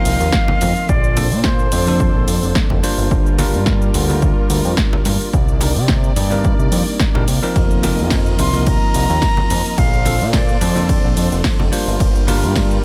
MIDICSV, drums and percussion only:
0, 0, Header, 1, 2, 480
1, 0, Start_track
1, 0, Tempo, 555556
1, 770, Time_signature, 4, 2, 24, 8
1, 11097, End_track
2, 0, Start_track
2, 0, Title_t, "Drums"
2, 45, Note_on_c, 9, 46, 102
2, 46, Note_on_c, 9, 82, 79
2, 132, Note_off_c, 9, 46, 0
2, 133, Note_off_c, 9, 82, 0
2, 176, Note_on_c, 9, 82, 35
2, 262, Note_off_c, 9, 82, 0
2, 280, Note_on_c, 9, 38, 127
2, 286, Note_on_c, 9, 82, 46
2, 290, Note_on_c, 9, 36, 124
2, 367, Note_off_c, 9, 38, 0
2, 373, Note_off_c, 9, 82, 0
2, 377, Note_off_c, 9, 36, 0
2, 416, Note_on_c, 9, 63, 103
2, 503, Note_off_c, 9, 63, 0
2, 527, Note_on_c, 9, 46, 107
2, 529, Note_on_c, 9, 82, 84
2, 532, Note_on_c, 9, 64, 101
2, 614, Note_off_c, 9, 46, 0
2, 615, Note_off_c, 9, 82, 0
2, 619, Note_off_c, 9, 64, 0
2, 655, Note_on_c, 9, 82, 34
2, 741, Note_off_c, 9, 82, 0
2, 768, Note_on_c, 9, 82, 44
2, 770, Note_on_c, 9, 36, 127
2, 855, Note_off_c, 9, 82, 0
2, 856, Note_off_c, 9, 36, 0
2, 896, Note_on_c, 9, 82, 33
2, 983, Note_off_c, 9, 82, 0
2, 1008, Note_on_c, 9, 46, 115
2, 1009, Note_on_c, 9, 82, 82
2, 1012, Note_on_c, 9, 63, 106
2, 1095, Note_off_c, 9, 46, 0
2, 1096, Note_off_c, 9, 82, 0
2, 1099, Note_off_c, 9, 63, 0
2, 1137, Note_on_c, 9, 82, 34
2, 1224, Note_off_c, 9, 82, 0
2, 1242, Note_on_c, 9, 38, 127
2, 1248, Note_on_c, 9, 82, 45
2, 1249, Note_on_c, 9, 36, 115
2, 1328, Note_off_c, 9, 38, 0
2, 1334, Note_off_c, 9, 82, 0
2, 1336, Note_off_c, 9, 36, 0
2, 1374, Note_on_c, 9, 82, 33
2, 1460, Note_off_c, 9, 82, 0
2, 1485, Note_on_c, 9, 46, 110
2, 1486, Note_on_c, 9, 82, 81
2, 1492, Note_on_c, 9, 64, 87
2, 1571, Note_off_c, 9, 46, 0
2, 1572, Note_off_c, 9, 82, 0
2, 1578, Note_off_c, 9, 64, 0
2, 1614, Note_on_c, 9, 82, 33
2, 1615, Note_on_c, 9, 63, 71
2, 1700, Note_off_c, 9, 82, 0
2, 1701, Note_off_c, 9, 63, 0
2, 1729, Note_on_c, 9, 36, 127
2, 1729, Note_on_c, 9, 82, 45
2, 1815, Note_off_c, 9, 82, 0
2, 1816, Note_off_c, 9, 36, 0
2, 1968, Note_on_c, 9, 46, 112
2, 1969, Note_on_c, 9, 82, 80
2, 2054, Note_off_c, 9, 46, 0
2, 2055, Note_off_c, 9, 82, 0
2, 2099, Note_on_c, 9, 82, 35
2, 2186, Note_off_c, 9, 82, 0
2, 2205, Note_on_c, 9, 38, 123
2, 2209, Note_on_c, 9, 36, 121
2, 2211, Note_on_c, 9, 82, 46
2, 2292, Note_off_c, 9, 38, 0
2, 2295, Note_off_c, 9, 36, 0
2, 2297, Note_off_c, 9, 82, 0
2, 2332, Note_on_c, 9, 63, 92
2, 2419, Note_off_c, 9, 63, 0
2, 2450, Note_on_c, 9, 46, 112
2, 2451, Note_on_c, 9, 82, 81
2, 2536, Note_off_c, 9, 46, 0
2, 2537, Note_off_c, 9, 82, 0
2, 2578, Note_on_c, 9, 82, 34
2, 2664, Note_off_c, 9, 82, 0
2, 2689, Note_on_c, 9, 36, 127
2, 2689, Note_on_c, 9, 82, 41
2, 2775, Note_off_c, 9, 36, 0
2, 2775, Note_off_c, 9, 82, 0
2, 2819, Note_on_c, 9, 82, 31
2, 2905, Note_off_c, 9, 82, 0
2, 2924, Note_on_c, 9, 63, 105
2, 2926, Note_on_c, 9, 46, 116
2, 2927, Note_on_c, 9, 82, 81
2, 3011, Note_off_c, 9, 63, 0
2, 3012, Note_off_c, 9, 46, 0
2, 3013, Note_off_c, 9, 82, 0
2, 3057, Note_on_c, 9, 82, 31
2, 3143, Note_off_c, 9, 82, 0
2, 3162, Note_on_c, 9, 38, 124
2, 3168, Note_on_c, 9, 82, 46
2, 3169, Note_on_c, 9, 36, 119
2, 3249, Note_off_c, 9, 38, 0
2, 3255, Note_off_c, 9, 36, 0
2, 3255, Note_off_c, 9, 82, 0
2, 3296, Note_on_c, 9, 82, 33
2, 3383, Note_off_c, 9, 82, 0
2, 3406, Note_on_c, 9, 46, 116
2, 3407, Note_on_c, 9, 82, 77
2, 3409, Note_on_c, 9, 64, 80
2, 3493, Note_off_c, 9, 46, 0
2, 3494, Note_off_c, 9, 82, 0
2, 3496, Note_off_c, 9, 64, 0
2, 3537, Note_on_c, 9, 82, 34
2, 3539, Note_on_c, 9, 63, 72
2, 3623, Note_off_c, 9, 82, 0
2, 3626, Note_off_c, 9, 63, 0
2, 3648, Note_on_c, 9, 82, 44
2, 3649, Note_on_c, 9, 36, 122
2, 3734, Note_off_c, 9, 82, 0
2, 3735, Note_off_c, 9, 36, 0
2, 3887, Note_on_c, 9, 46, 109
2, 3888, Note_on_c, 9, 82, 76
2, 3973, Note_off_c, 9, 46, 0
2, 3974, Note_off_c, 9, 82, 0
2, 4016, Note_on_c, 9, 82, 33
2, 4103, Note_off_c, 9, 82, 0
2, 4123, Note_on_c, 9, 38, 123
2, 4128, Note_on_c, 9, 82, 44
2, 4129, Note_on_c, 9, 36, 127
2, 4209, Note_off_c, 9, 38, 0
2, 4215, Note_off_c, 9, 36, 0
2, 4215, Note_off_c, 9, 82, 0
2, 4259, Note_on_c, 9, 63, 101
2, 4345, Note_off_c, 9, 63, 0
2, 4365, Note_on_c, 9, 46, 115
2, 4366, Note_on_c, 9, 82, 78
2, 4371, Note_on_c, 9, 64, 98
2, 4452, Note_off_c, 9, 46, 0
2, 4453, Note_off_c, 9, 82, 0
2, 4457, Note_off_c, 9, 64, 0
2, 4498, Note_on_c, 9, 82, 32
2, 4584, Note_off_c, 9, 82, 0
2, 4609, Note_on_c, 9, 36, 127
2, 4609, Note_on_c, 9, 82, 41
2, 4695, Note_off_c, 9, 36, 0
2, 4696, Note_off_c, 9, 82, 0
2, 4737, Note_on_c, 9, 82, 29
2, 4823, Note_off_c, 9, 82, 0
2, 4843, Note_on_c, 9, 63, 95
2, 4847, Note_on_c, 9, 46, 117
2, 4849, Note_on_c, 9, 82, 78
2, 4930, Note_off_c, 9, 63, 0
2, 4934, Note_off_c, 9, 46, 0
2, 4935, Note_off_c, 9, 82, 0
2, 4977, Note_on_c, 9, 82, 31
2, 5063, Note_off_c, 9, 82, 0
2, 5082, Note_on_c, 9, 38, 121
2, 5088, Note_on_c, 9, 82, 44
2, 5089, Note_on_c, 9, 36, 126
2, 5168, Note_off_c, 9, 38, 0
2, 5174, Note_off_c, 9, 82, 0
2, 5176, Note_off_c, 9, 36, 0
2, 5215, Note_on_c, 9, 82, 30
2, 5302, Note_off_c, 9, 82, 0
2, 5323, Note_on_c, 9, 64, 78
2, 5325, Note_on_c, 9, 46, 107
2, 5327, Note_on_c, 9, 82, 75
2, 5410, Note_off_c, 9, 64, 0
2, 5412, Note_off_c, 9, 46, 0
2, 5413, Note_off_c, 9, 82, 0
2, 5454, Note_on_c, 9, 63, 65
2, 5454, Note_on_c, 9, 82, 33
2, 5540, Note_off_c, 9, 82, 0
2, 5541, Note_off_c, 9, 63, 0
2, 5566, Note_on_c, 9, 82, 42
2, 5570, Note_on_c, 9, 36, 118
2, 5653, Note_off_c, 9, 82, 0
2, 5656, Note_off_c, 9, 36, 0
2, 5697, Note_on_c, 9, 82, 31
2, 5783, Note_off_c, 9, 82, 0
2, 5806, Note_on_c, 9, 46, 107
2, 5807, Note_on_c, 9, 82, 74
2, 5892, Note_off_c, 9, 46, 0
2, 5893, Note_off_c, 9, 82, 0
2, 5937, Note_on_c, 9, 82, 33
2, 6024, Note_off_c, 9, 82, 0
2, 6044, Note_on_c, 9, 38, 115
2, 6050, Note_on_c, 9, 36, 124
2, 6050, Note_on_c, 9, 82, 43
2, 6130, Note_off_c, 9, 38, 0
2, 6136, Note_off_c, 9, 36, 0
2, 6136, Note_off_c, 9, 82, 0
2, 6178, Note_on_c, 9, 63, 96
2, 6265, Note_off_c, 9, 63, 0
2, 6288, Note_on_c, 9, 46, 111
2, 6289, Note_on_c, 9, 82, 77
2, 6374, Note_off_c, 9, 46, 0
2, 6376, Note_off_c, 9, 82, 0
2, 6419, Note_on_c, 9, 82, 32
2, 6506, Note_off_c, 9, 82, 0
2, 6530, Note_on_c, 9, 36, 124
2, 6530, Note_on_c, 9, 51, 63
2, 6531, Note_on_c, 9, 82, 41
2, 6616, Note_off_c, 9, 36, 0
2, 6617, Note_off_c, 9, 51, 0
2, 6618, Note_off_c, 9, 82, 0
2, 6658, Note_on_c, 9, 82, 32
2, 6744, Note_off_c, 9, 82, 0
2, 6767, Note_on_c, 9, 46, 108
2, 6769, Note_on_c, 9, 82, 78
2, 6771, Note_on_c, 9, 63, 97
2, 6854, Note_off_c, 9, 46, 0
2, 6855, Note_off_c, 9, 82, 0
2, 6857, Note_off_c, 9, 63, 0
2, 6897, Note_on_c, 9, 82, 32
2, 6983, Note_off_c, 9, 82, 0
2, 7002, Note_on_c, 9, 38, 112
2, 7007, Note_on_c, 9, 51, 70
2, 7008, Note_on_c, 9, 82, 45
2, 7010, Note_on_c, 9, 36, 116
2, 7088, Note_off_c, 9, 38, 0
2, 7093, Note_off_c, 9, 51, 0
2, 7094, Note_off_c, 9, 82, 0
2, 7096, Note_off_c, 9, 36, 0
2, 7136, Note_on_c, 9, 82, 30
2, 7223, Note_off_c, 9, 82, 0
2, 7245, Note_on_c, 9, 64, 86
2, 7247, Note_on_c, 9, 46, 108
2, 7248, Note_on_c, 9, 82, 75
2, 7332, Note_off_c, 9, 64, 0
2, 7333, Note_off_c, 9, 46, 0
2, 7334, Note_off_c, 9, 82, 0
2, 7374, Note_on_c, 9, 63, 66
2, 7376, Note_on_c, 9, 82, 33
2, 7461, Note_off_c, 9, 63, 0
2, 7462, Note_off_c, 9, 82, 0
2, 7487, Note_on_c, 9, 51, 66
2, 7489, Note_on_c, 9, 82, 44
2, 7490, Note_on_c, 9, 36, 118
2, 7574, Note_off_c, 9, 51, 0
2, 7575, Note_off_c, 9, 82, 0
2, 7576, Note_off_c, 9, 36, 0
2, 7727, Note_on_c, 9, 46, 105
2, 7728, Note_on_c, 9, 82, 77
2, 7814, Note_off_c, 9, 46, 0
2, 7815, Note_off_c, 9, 82, 0
2, 7857, Note_on_c, 9, 82, 33
2, 7944, Note_off_c, 9, 82, 0
2, 7965, Note_on_c, 9, 38, 111
2, 7969, Note_on_c, 9, 36, 117
2, 7969, Note_on_c, 9, 51, 69
2, 7970, Note_on_c, 9, 82, 44
2, 8051, Note_off_c, 9, 38, 0
2, 8056, Note_off_c, 9, 36, 0
2, 8056, Note_off_c, 9, 51, 0
2, 8057, Note_off_c, 9, 82, 0
2, 8096, Note_on_c, 9, 63, 96
2, 8183, Note_off_c, 9, 63, 0
2, 8210, Note_on_c, 9, 46, 111
2, 8212, Note_on_c, 9, 82, 77
2, 8213, Note_on_c, 9, 64, 84
2, 8297, Note_off_c, 9, 46, 0
2, 8298, Note_off_c, 9, 82, 0
2, 8299, Note_off_c, 9, 64, 0
2, 8342, Note_on_c, 9, 82, 32
2, 8429, Note_off_c, 9, 82, 0
2, 8449, Note_on_c, 9, 51, 67
2, 8450, Note_on_c, 9, 36, 120
2, 8450, Note_on_c, 9, 82, 43
2, 8535, Note_off_c, 9, 51, 0
2, 8536, Note_off_c, 9, 36, 0
2, 8537, Note_off_c, 9, 82, 0
2, 8582, Note_on_c, 9, 82, 31
2, 8668, Note_off_c, 9, 82, 0
2, 8686, Note_on_c, 9, 63, 94
2, 8690, Note_on_c, 9, 46, 105
2, 8692, Note_on_c, 9, 82, 82
2, 8773, Note_off_c, 9, 63, 0
2, 8777, Note_off_c, 9, 46, 0
2, 8778, Note_off_c, 9, 82, 0
2, 8820, Note_on_c, 9, 82, 33
2, 8907, Note_off_c, 9, 82, 0
2, 8926, Note_on_c, 9, 38, 112
2, 8930, Note_on_c, 9, 36, 118
2, 8931, Note_on_c, 9, 51, 73
2, 8932, Note_on_c, 9, 82, 47
2, 9013, Note_off_c, 9, 38, 0
2, 9016, Note_off_c, 9, 36, 0
2, 9017, Note_off_c, 9, 51, 0
2, 9018, Note_off_c, 9, 82, 0
2, 9060, Note_on_c, 9, 82, 33
2, 9146, Note_off_c, 9, 82, 0
2, 9167, Note_on_c, 9, 64, 83
2, 9169, Note_on_c, 9, 46, 104
2, 9171, Note_on_c, 9, 82, 79
2, 9253, Note_off_c, 9, 64, 0
2, 9256, Note_off_c, 9, 46, 0
2, 9257, Note_off_c, 9, 82, 0
2, 9295, Note_on_c, 9, 63, 67
2, 9299, Note_on_c, 9, 82, 32
2, 9381, Note_off_c, 9, 63, 0
2, 9386, Note_off_c, 9, 82, 0
2, 9410, Note_on_c, 9, 36, 118
2, 9411, Note_on_c, 9, 51, 69
2, 9412, Note_on_c, 9, 82, 46
2, 9496, Note_off_c, 9, 36, 0
2, 9497, Note_off_c, 9, 51, 0
2, 9498, Note_off_c, 9, 82, 0
2, 9650, Note_on_c, 9, 46, 104
2, 9651, Note_on_c, 9, 82, 78
2, 9736, Note_off_c, 9, 46, 0
2, 9737, Note_off_c, 9, 82, 0
2, 9779, Note_on_c, 9, 82, 34
2, 9866, Note_off_c, 9, 82, 0
2, 9885, Note_on_c, 9, 38, 116
2, 9890, Note_on_c, 9, 36, 119
2, 9890, Note_on_c, 9, 51, 70
2, 9891, Note_on_c, 9, 82, 46
2, 9971, Note_off_c, 9, 38, 0
2, 9976, Note_off_c, 9, 36, 0
2, 9976, Note_off_c, 9, 51, 0
2, 9977, Note_off_c, 9, 82, 0
2, 10018, Note_on_c, 9, 63, 85
2, 10104, Note_off_c, 9, 63, 0
2, 10132, Note_on_c, 9, 46, 108
2, 10133, Note_on_c, 9, 82, 82
2, 10218, Note_off_c, 9, 46, 0
2, 10219, Note_off_c, 9, 82, 0
2, 10262, Note_on_c, 9, 82, 34
2, 10348, Note_off_c, 9, 82, 0
2, 10370, Note_on_c, 9, 36, 118
2, 10371, Note_on_c, 9, 51, 69
2, 10372, Note_on_c, 9, 82, 44
2, 10456, Note_off_c, 9, 36, 0
2, 10457, Note_off_c, 9, 51, 0
2, 10458, Note_off_c, 9, 82, 0
2, 10501, Note_on_c, 9, 82, 33
2, 10587, Note_off_c, 9, 82, 0
2, 10610, Note_on_c, 9, 46, 105
2, 10610, Note_on_c, 9, 63, 88
2, 10611, Note_on_c, 9, 82, 85
2, 10696, Note_off_c, 9, 63, 0
2, 10697, Note_off_c, 9, 46, 0
2, 10698, Note_off_c, 9, 82, 0
2, 10739, Note_on_c, 9, 82, 34
2, 10825, Note_off_c, 9, 82, 0
2, 10848, Note_on_c, 9, 38, 118
2, 10850, Note_on_c, 9, 36, 108
2, 10852, Note_on_c, 9, 51, 70
2, 10853, Note_on_c, 9, 82, 48
2, 10934, Note_off_c, 9, 38, 0
2, 10936, Note_off_c, 9, 36, 0
2, 10939, Note_off_c, 9, 51, 0
2, 10940, Note_off_c, 9, 82, 0
2, 10980, Note_on_c, 9, 82, 34
2, 11066, Note_off_c, 9, 82, 0
2, 11097, End_track
0, 0, End_of_file